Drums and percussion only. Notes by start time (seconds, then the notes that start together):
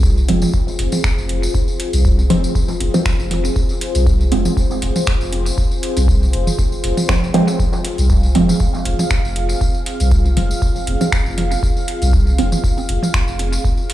0.03 kick, tambourine
0.18 tambourine
0.28 closed hi-hat, high tom
0.42 mid tom, tambourine
0.53 kick, tambourine
0.68 tambourine
0.79 closed hi-hat
0.92 mid tom, high tom, tambourine
1.04 finger snap, kick, tambourine
1.18 tambourine
1.29 closed hi-hat
1.43 tambourine
1.54 kick, high tom, tambourine
1.68 tambourine
1.80 closed hi-hat
1.93 closed hi-hat, tambourine
2.05 kick, tambourine
2.18 high tom, tambourine
2.30 closed hi-hat
2.44 tambourine
2.55 kick, tambourine
2.68 tambourine
2.80 closed hi-hat, high tom
2.94 mid tom, tambourine
3.05 finger snap, kick, tambourine
3.20 tambourine
3.31 closed hi-hat, mid tom
3.45 high tom, tambourine
3.56 kick, tambourine
3.69 tambourine
3.81 closed hi-hat
3.95 closed hi-hat, tambourine
4.07 kick, high tom, tambourine
4.21 tambourine
4.32 closed hi-hat
4.45 mid tom, tambourine
4.57 kick, tambourine
4.71 high tom, tambourine
4.82 closed hi-hat
4.96 mid tom, tambourine
5.06 finger snap, kick, tambourine
5.21 tambourine
5.33 closed hi-hat, high tom
5.46 tambourine
5.58 kick, tambourine
5.71 tambourine
5.83 closed hi-hat
5.97 closed hi-hat, high tom, tambourine
6.08 kick, tambourine
6.23 tambourine
6.33 closed hi-hat
6.47 mid tom, tambourine
6.58 kick, high tom, tambourine
6.72 tambourine
6.84 closed hi-hat
6.97 mid tom, tambourine
7.09 finger snap, kick, tambourine
7.23 high tom, tambourine
7.34 closed hi-hat, mid tom
7.48 tambourine
7.59 kick, tambourine
7.73 high tom, tambourine
7.85 closed hi-hat
7.98 closed hi-hat, tambourine
8.10 kick, tambourine
8.23 tambourine
8.35 closed hi-hat, high tom
8.49 mid tom, tambourine
8.60 kick, tambourine
8.74 tambourine
8.85 closed hi-hat
8.99 mid tom, high tom, tambourine
9.10 finger snap, kick, tambourine
9.25 tambourine
9.36 closed hi-hat
9.49 tambourine
9.61 kick, high tom, tambourine
9.74 tambourine
9.86 closed hi-hat
10.00 closed hi-hat, tambourine
10.11 kick, tambourine
10.25 high tom, tambourine
10.37 closed hi-hat
10.51 tambourine
10.62 kick, tambourine
10.76 tambourine
10.87 closed hi-hat, high tom
11.01 mid tom, tambourine
11.12 finger snap, kick, tambourine
11.26 tambourine
11.38 closed hi-hat, mid tom
11.51 high tom, tambourine
11.63 kick, tambourine
11.77 tambourine
11.88 closed hi-hat
12.02 closed hi-hat, tambourine
12.13 kick, high tom, tambourine
12.27 tambourine
12.38 closed hi-hat
12.52 mid tom, tambourine
12.64 kick, tambourine
12.78 high tom, tambourine
12.89 closed hi-hat
13.03 mid tom, tambourine
13.14 finger snap, kick, tambourine
13.28 tambourine
13.39 closed hi-hat, high tom
13.52 tambourine
13.65 kick, tambourine
13.77 tambourine
13.90 closed hi-hat